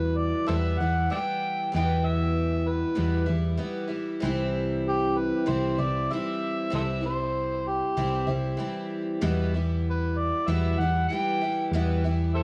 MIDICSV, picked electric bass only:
0, 0, Header, 1, 2, 480
1, 0, Start_track
1, 0, Key_signature, 1, "minor"
1, 0, Tempo, 624350
1, 1332, Time_signature, 4, 2, 24, 8
1, 9556, End_track
2, 0, Start_track
2, 0, Title_t, "Picked electric bass"
2, 0, Program_c, 0, 34
2, 0, Note_on_c, 0, 40, 80
2, 243, Note_off_c, 0, 40, 0
2, 377, Note_on_c, 0, 40, 100
2, 582, Note_off_c, 0, 40, 0
2, 619, Note_on_c, 0, 40, 77
2, 823, Note_off_c, 0, 40, 0
2, 1342, Note_on_c, 0, 40, 87
2, 2168, Note_off_c, 0, 40, 0
2, 2292, Note_on_c, 0, 40, 95
2, 2500, Note_off_c, 0, 40, 0
2, 2531, Note_on_c, 0, 40, 72
2, 2740, Note_off_c, 0, 40, 0
2, 3252, Note_on_c, 0, 36, 77
2, 4083, Note_off_c, 0, 36, 0
2, 4217, Note_on_c, 0, 36, 96
2, 4424, Note_off_c, 0, 36, 0
2, 4450, Note_on_c, 0, 36, 73
2, 4659, Note_off_c, 0, 36, 0
2, 5177, Note_on_c, 0, 36, 81
2, 6004, Note_off_c, 0, 36, 0
2, 6131, Note_on_c, 0, 36, 89
2, 6339, Note_off_c, 0, 36, 0
2, 6368, Note_on_c, 0, 36, 70
2, 6577, Note_off_c, 0, 36, 0
2, 7092, Note_on_c, 0, 40, 85
2, 7919, Note_off_c, 0, 40, 0
2, 8055, Note_on_c, 0, 40, 94
2, 8260, Note_off_c, 0, 40, 0
2, 8296, Note_on_c, 0, 40, 75
2, 8500, Note_off_c, 0, 40, 0
2, 9007, Note_on_c, 0, 40, 89
2, 9556, Note_off_c, 0, 40, 0
2, 9556, End_track
0, 0, End_of_file